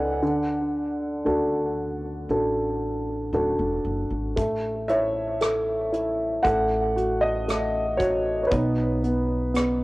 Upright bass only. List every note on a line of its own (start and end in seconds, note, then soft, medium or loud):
0.00 0.22 C#2 medium
0.22 1.21 D2 medium
1.26 2.25 D2 medium
2.29 3.29 A1 medium
3.33 3.56 D1 medium
3.59 3.82 E1 medium
3.85 4.08 F#1 medium
4.10 4.34 G#1 medium
4.37 6.40 A1 medium
6.44 8.48 A1 medium
8.51 9.84 B1 medium